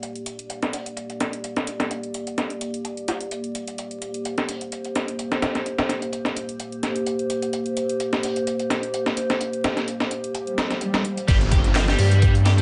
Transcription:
Already playing: ambient pad A#3 G4 D5
0.03 closed hi-hat
0.16 closed hi-hat
0.26 closed hi-hat
0.39 closed hi-hat
0.50 closed hi-hat
0.62 snare, closed hi-hat
0.73 closed hi-hat, open hi-hat
0.86 closed hi-hat
0.97 closed hi-hat
1.10 closed hi-hat
1.20 snare, closed hi-hat
1.33 closed hi-hat
1.44 closed hi-hat
1.56 snare, closed hi-hat
1.67 closed hi-hat
1.80 snare, closed hi-hat
1.91 closed hi-hat
2.03 closed hi-hat
2.14 closed hi-hat
2.27 closed hi-hat
2.38 snare, closed hi-hat
2.50 closed hi-hat
2.61 closed hi-hat
2.74 closed hi-hat
2.85 closed hi-hat
2.97 closed hi-hat
3.08 snare, closed hi-hat
3.21 closed hi-hat
3.31 closed hi-hat
3.44 closed hi-hat
3.55 closed hi-hat
3.68 closed hi-hat
3.78 ambient pad C5, closed hi-hat
3.91 closed hi-hat
4.02 closed hi-hat
4.14 closed hi-hat
4.25 closed hi-hat
4.38 snare, closed hi-hat
4.49 closed hi-hat, open hi-hat
4.61 closed hi-hat
4.72 closed hi-hat
4.84 closed hi-hat
4.95 snare, closed hi-hat
5.08 closed hi-hat
5.19 closed hi-hat
5.32 snare, closed hi-hat
5.42 snare, closed hi-hat
5.55 snare, closed hi-hat
5.66 closed hi-hat
5.79 snare, closed hi-hat
5.89 snare, closed hi-hat
6.02 closed hi-hat
6.13 closed hi-hat
6.25 snare, closed hi-hat
6.36 closed hi-hat
6.49 closed hi-hat
6.60 closed hi-hat
6.72 closed hi-hat
6.83 snare, closed hi-hat
6.96 closed hi-hat
7.06 closed hi-hat
7.19 closed hi-hat
7.30 closed hi-hat
7.42 closed hi-hat
7.53 closed hi-hat
7.66 closed hi-hat
7.77 closed hi-hat
7.89 closed hi-hat
8.00 closed hi-hat
8.13 snare, closed hi-hat
8.23 closed hi-hat, open hi-hat
8.36 closed hi-hat
8.47 closed hi-hat
8.59 closed hi-hat
8.70 snare, closed hi-hat
8.83 closed hi-hat
8.94 closed hi-hat
9.06 snare, closed hi-hat
9.17 closed hi-hat
9.30 snare, closed hi-hat
9.41 closed hi-hat
9.53 closed hi-hat
9.64 snare, closed hi-hat
9.77 snare, closed hi-hat
9.88 closed hi-hat
10.00 snare, closed hi-hat
10.11 closed hi-hat
10.24 closed hi-hat
10.35 closed hi-hat, swell
10.47 closed hi-hat
10.58 snare, closed hi-hat
10.71 snare, closed hi-hat
10.81 closed hi-hat
10.94 snare, closed hi-hat
11.05 closed hi-hat
11.17 closed hi-hat
11.28 detuned saw bass G1, overdriven electric guitar G3, ambient pad A#3 G4 D5, kick, closed hi-hat, downlifter
11.41 closed hi-hat
11.52 overdriven electric guitar G4, kick, closed hi-hat
11.64 closed hi-hat
11.75 overdriven electric guitar F3, snare, clap, closed hi-hat
11.88 overdriven electric guitar G3, snare, closed hi-hat
11.99 detuned saw bass G2, closed hi-hat, open hi-hat
12.11 closed hi-hat
12.22 kick, closed hi-hat
12.35 closed hi-hat
12.46 overdriven electric guitar G4, snare, closed hi-hat
12.58 overdriven electric guitar G3, closed hi-hat

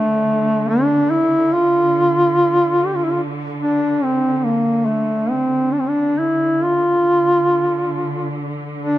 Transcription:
Already playing: string section D3, duduk A3
0.69 duduk D4
1.11 duduk E4
1.53 duduk F4
2.86 duduk G4
2.95 duduk F4
3.04 duduk E4
3.12 duduk F4
3.62 duduk D4
4.03 duduk C4
4.37 duduk C4
4.44 duduk A#3
4.86 duduk A3
5.30 duduk C4
5.73 duduk D4
5.80 duduk C4
5.89 duduk D4
6.19 duduk E4
6.64 duduk F4
7.07 string section D3
8.83 duduk D4

